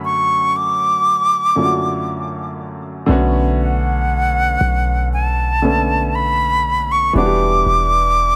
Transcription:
Already playing: grand piano F#2 D3 F#3 A3 C#4 F#4
0.05 flute C#6
0.56 flute D6
1.55 grand piano F#2 D3 F#3 A3 C#4 F4
1.65 grand piano F#4
3.06 808-style bass B1, grand piano D3 A3 B3
3.11 grand piano C#4 F#4
3.60 flute F#5
4.61 808-style bass B1
5.13 flute A5
5.62 grand piano D3 A3 B3 C#4 A4
6.15 flute B5
6.92 flute C#6
7.13 808-style bass E1, grand piano E3 G3 B3, flute D6
7.18 grand piano D4 F#4
7.26 grand piano G4
7.66 808-style bass E1

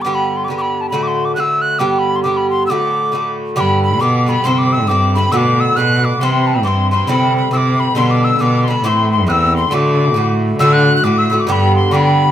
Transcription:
0.02 bouzouki G2, tin whistle D6
0.06 bouzouki D3 B3 G4
0.15 tin whistle B5
0.37 tin whistle C6
0.44 bouzouki G2, tin whistle D6
0.50 bouzouki D3 B3 G4
0.58 tin whistle B5 D6
0.81 tin whistle A5
0.90 bouzouki A2 D3 A3, tin whistle B5
0.94 bouzouki F#4
1.03 tin whistle D6
1.08 tin whistle C6
1.25 tin whistle D6
1.35 bouzouki A2 D3 A3 F#4, tin whistle F#6
1.40 tin whistle E6
1.62 tin whistle F#6
1.79 bouzouki G2 D3 B3 G4, tin whistle D6
1.94 tin whistle D6
1.99 tin whistle B5
2.16 tin whistle C6
2.23 bouzouki G2 D3 B3 G4, tin whistle D6
2.37 tin whistle B5
2.50 tin whistle C6
2.66 bouzouki A2 D3, tin whistle D6 E6
2.71 bouzouki A3 F#4
3.12 bouzouki A2 D3 A3 F#4
3.56 bouzouki G2 D3 B3 G4, cello G2, tin whistle B5 D6
3.60 tin whistle B5
3.83 tin whistle B5
3.99 bouzouki G2 D3 B3 G4, cello B2, tin whistle D6
4.26 bouzouki G2 D3 B3 G4, tin whistle B5
4.44 bouzouki G2 D3 C4 E4, cello C3, tin whistle C6
4.58 tin whistle D6
4.73 tin whistle E6
4.87 bouzouki G2 D3 C4 E4, cello G2, tin whistle D6
5.15 bouzouki G2 D3 C4 E4, tin whistle B5
5.32 bouzouki A2 D3 B3 F#4, cello B2, tin whistle D6 E6
5.37 tin whistle D6
5.60 tin whistle E6
5.75 bouzouki A2 D3 B3, cello B2, tin whistle F#6
5.80 bouzouki F#4
6.04 tin whistle D6
6.20 bouzouki G2 E3 C4 E4, cello C3, tin whistle C6 D6
6.24 tin whistle C6
6.46 tin whistle A5
6.56 tin whistle B5
6.63 bouzouki G2 E3 C4 E4, cello G2, tin whistle C6 D6
6.68 tin whistle C6
6.91 bouzouki G2 E3 C4 E4, tin whistle C6
7.07 bouzouki G2 D3 C4 E4, cello C3, tin whistle B5
7.36 tin whistle B5
7.51 bouzouki G2 D3 C4 E4, cello C3, tin whistle D6 E6
7.57 tin whistle D6
7.80 tin whistle B5
7.95 bouzouki G2 D3 B3 D4, cello B2, tin whistle C6
8.10 tin whistle D6
8.24 tin whistle E6
8.39 bouzouki G2 D3 B3 D4, cello B2, tin whistle D6
8.62 tin whistle C6
8.68 bouzouki G2 D3 B3 D4, tin whistle B5
8.83 cello A2, bouzouki A2 E3 C4 E4, tin whistle C6 D6
8.88 tin whistle C6
9.11 tin whistle C6
9.27 cello E2, bouzouki A2 E3 C4 E4, tin whistle E6 F#6
9.32 tin whistle E6
9.55 tin whistle C6
9.71 bouzouki A2 D3 A3 F#4, cello D3, tin whistle D6
10.14 bouzouki A2 D3 A3 F#4, cello A2
10.59 bouzouki A2 D3 A3 F#4, cello D3, tin whistle E6
10.73 tin whistle F#6
10.96 tin whistle F#6
11.03 cello A2, bouzouki A2 D3 A3 F#4, tin whistle D6
11.18 tin whistle E6
11.30 bouzouki A2 D3 A3 F#4
11.40 tin whistle D6
11.47 cello G2, bouzouki G2 D3 B3 G4, tin whistle B5 D6
11.52 tin whistle B5
11.76 tin whistle C6
11.91 bouzouki G2 D3 B3 G4, cello D3, tin whistle B5 D6
11.96 tin whistle B5

